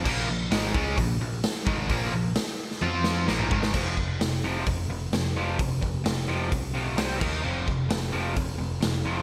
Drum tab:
CC |x---------------|----------------|x---------------|--------------x-|
HH |----o---o---o---|o---o-----------|----o---o---o---|o---o---o---o---|
SD |----o-------o---|----o--o--o-o--o|----o-------o---|----o-------o---|
T1 |----------------|--------o-------|----------------|----------------|
T2 |----------------|-------------o--|----------------|----------------|
BD |o-----o-o-----o-|o-------------o-|o-o-----o-------|o-o-----o-----o-|

CC |----------------|
HH |----o---o---o---|
SD |----o-------o---|
T1 |----------------|
T2 |----------------|
BD |--o-----o-------|